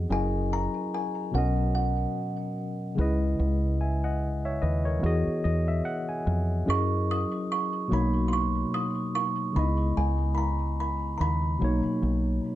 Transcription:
Already playing: tine electric piano E3 B3 F#4 G#4 D#5
0.10 fingered electric bass F#1, tine electric piano F#3 C#4 E4 G#4 A#4 D#5, kalimba G#5
0.53 kalimba A#5
0.94 kalimba G#5
1.31 fingered electric bass B1, tine electric piano B2 F#3 C#4, kalimba F#5
1.36 tine electric piano A#4 D#5
1.75 kalimba F#5
2.95 fingered electric bass C#2, tine electric piano C#3 G#3 E4
3.00 tine electric piano B4 D#5
3.40 fingered electric bass C#2
3.81 tine electric piano E5 G#5
4.04 tine electric piano D#5 F#5
4.45 tine electric piano C#5 E5
4.62 fingered electric bass D#2, tine electric piano B4 D#5
4.85 tine electric piano A#4 C#5
5.00 tine electric piano E3 B3 F#4
5.04 fingered electric bass E2, tine electric piano G#4 D#5
5.27 muted fingered electric bass stroke
5.44 fingered electric bass E2, tine electric piano D#5
5.68 tine electric piano E5
5.85 tine electric piano F#5
6.09 tine electric piano G#5
6.27 fingered electric bass F2
6.66 fingered electric bass F#2, tine electric piano F#3 C#4 E4 G#4 A#4 D#5
6.70 kalimba C#6
7.11 kalimba D#6
7.52 kalimba C#6
7.88 fingered electric bass B1, tine electric piano B2 F#3 A#3
7.92 tine electric piano D#4 C#5, kalimba B5
8.28 kalimba C6
8.33 kalimba C#6
8.74 kalimba D#6
9.15 kalimba C#6
9.52 fingered electric bass C#2, tine electric piano C#3 G#3 B3, kalimba B5
9.57 tine electric piano D#4 D#5
9.64 tine electric piano E4
9.97 fingered electric bass C#2, kalimba G#5
10.35 kalimba A#5 B5
10.80 kalimba B5
11.18 fingered electric bass D#2, kalimba A#5 B5
11.58 fingered electric bass B1, tine electric piano B2 F#3 A#3
11.63 tine electric piano D#4 C#5
11.85 muted fingered electric bass stroke
12.03 fingered electric bass B1

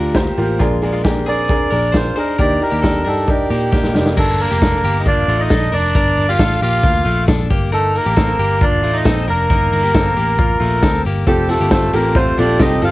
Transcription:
Already playing: picked electric bass D2, clean electric guitar D4 A#4, upright piano F4 G4 A#4
0.15 clean electric guitar A#3 G4, upright piano F4 G4 C5 A#5, kick, snare, closed hi-hat
0.37 picked electric bass A1, upright piano F4 G4 A#4, open hi-hat
0.59 picked electric bass A#1, clean electric guitar G#3 F4, upright piano D4 G#4 A#4, kick, closed hi-hat
0.82 upright piano D4 G#4 A#4, open hi-hat
0.93 clean electric guitar G#3 F4
1.04 clean electric guitar A#3 G4, upright piano D4 G#4 A#4, kick, snare, closed hi-hat
1.26 clean electric guitar C4 G#4, upright piano D4 G#4 A#4, melodica D5, open hi-hat
1.49 upright piano D4 G#4 A#4, kick, closed hi-hat
1.71 picked electric bass A#1, clean electric guitar D4 A#4, upright piano D4 G#4 A#4, open hi-hat
1.92 upright piano D4 G#4 A#4, clean electric guitar F4 C5, melodica C5, kick, snare, closed hi-hat
2.16 upright piano D4 G#4 A#4, clean electric guitar D#4 C5, melodica A#4, open hi-hat
2.39 picked electric bass D#2, upright piano D4 D#4 G4, clean electric guitar D4 A#4, melodica D5, kick, closed hi-hat
2.61 upright piano D4 D#4 G4, melodica A#4, open hi-hat
2.71 picked electric bass D#2, clean electric guitar A#3 G4
2.82 clean electric guitar D4 A4, upright piano D4 D#4 G4, kick, snare, closed hi-hat
3.05 picked electric bass G2, clean electric guitar D4 A#4, upright piano D4 D#4 G4, melodica A4, open hi-hat
3.28 upright piano D4 D#4 A#4, melodica G4, kick, closed hi-hat
3.50 picked electric bass A#2, clean electric guitar A#3 G4, upright piano D4 D#4 G4, open hi-hat
3.72 clean electric guitar A#3 G4, upright piano D4 D#4 G4, kick, snare
3.84 snare
3.94 picked electric bass F1, upright piano D4 D#4 G4, snare
4.06 snare
4.17 picked electric bass G1, trumpet A3, clean electric guitar D4 A#4, melodica A4, kick, crash
4.39 trumpet A#3, melodica A#4, open hi-hat
4.51 picked electric bass F1, clean electric guitar A#3 G4
4.62 clean electric guitar D4 A4, kick, snare, closed hi-hat
4.84 picked electric bass G1, clean electric guitar A#3 G4, open hi-hat
5.00 trumpet D#4, melodica D#5
5.05 clean electric guitar A#3 F4, trumpet D4, melodica D5, kick, closed hi-hat
5.28 picked electric bass A1, clean electric guitar A3 F4, open hi-hat
5.40 trumpet D#4, melodica D#5
5.50 picked electric bass A#1, clean electric guitar D4 A4, kick, snare, closed hi-hat
5.72 picked electric bass F1, clean electric guitar D4 A#4, trumpet D4, melodica D5, open hi-hat
5.95 picked electric bass G1, clean electric guitar D4 A#4, kick, closed hi-hat
6.17 picked electric bass G1, open hi-hat
6.29 clean electric guitar A#3 G4, trumpet F4, melodica F5
6.39 picked electric bass A1, clean electric guitar D4 A4, kick, snare, closed hi-hat
6.61 picked electric bass A#1, clean electric guitar A#3 G4, trumpet F4, melodica F5, open hi-hat
6.83 picked electric bass D2, clean electric guitar A#3 F4, kick, closed hi-hat
7.05 picked electric bass A#1, clean electric guitar A3 F4, open hi-hat
7.28 picked electric bass A#1, clean electric guitar D4 A4, kick, snare, closed hi-hat
7.50 picked electric bass G1, clean electric guitar A#3 G4, kick, open hi-hat
7.72 trumpet A3, clean electric guitar D#4 A#4, melodica A4, closed hi-hat
7.94 trumpet A#3, melodica A#4, open hi-hat
8.06 picked electric bass A1, clean electric guitar A#3 G4
8.16 clean electric guitar C4 A4, kick, snare, closed hi-hat
8.39 picked electric bass G1, clean electric guitar A#3 G4, open hi-hat
8.61 clean electric guitar A#3 F4, trumpet D4, melodica D5, kick, closed hi-hat
8.83 picked electric bass A1, clean electric guitar A3 F4, open hi-hat
8.93 trumpet D#4, melodica D#5
9.05 picked electric bass A#1, clean electric guitar C4 A4, kick, snare, closed hi-hat
9.27 picked electric bass F1, trumpet A#3, clean electric guitar D4 A#4, melodica A#4, open hi-hat
9.50 picked electric bass G1, clean electric guitar D#4 A#4, kick, closed hi-hat
9.72 picked electric bass G1, open hi-hat
9.83 clean electric guitar A#3 G4
9.94 picked electric bass G1, clean electric guitar C4 A4, kick, snare, closed hi-hat
10.16 picked electric bass A1, clean electric guitar A#3 G4, open hi-hat
10.38 clean electric guitar A#3 F4, kick, closed hi-hat
10.60 picked electric bass A#1, clean electric guitar A3 F4, open hi-hat
10.83 picked electric bass D2, clean electric guitar C4 A4, kick, snare, closed hi-hat
11.05 picked electric bass G1, clean electric guitar A#3 G4, open hi-hat
11.27 picked electric bass F1, trumpet G3, upright piano C4 F4 G4 A4, clean electric guitar C4 A4, melodica G4, kick, closed hi-hat
11.48 trumpet A3, upright piano C4 F4 G4 A4, melodica A4, open hi-hat
11.60 picked electric bass G1, clean electric guitar A#3 G4
11.70 trumpet A3, upright piano C4 F4 G4 C5, clean electric guitar C4 A4, melodica A4, kick, snare, closed hi-hat
11.93 picked electric bass A1, trumpet A#3, clean electric guitar A#3 G4, upright piano C4 F4 G4 A4, melodica A#4, open hi-hat
12.14 clean electric guitar A3 F4, upright piano C4 F4 G4 C5, trumpet C4, melodica C5, kick, closed hi-hat
12.37 picked electric bass A#1, clean electric guitar A3 F4, upright piano C4 F4 G4 A4, trumpet D4, melodica D5, open hi-hat
12.59 picked electric bass C2, upright piano C4 F4 G4 A4, clean electric guitar C4 G4, trumpet D#4, melodica D#5, kick, snare, closed hi-hat
12.81 picked electric bass G1, upright piano C4 F4 G4 A4, clean electric guitar C4 A4, trumpet F4, melodica F5, open hi-hat

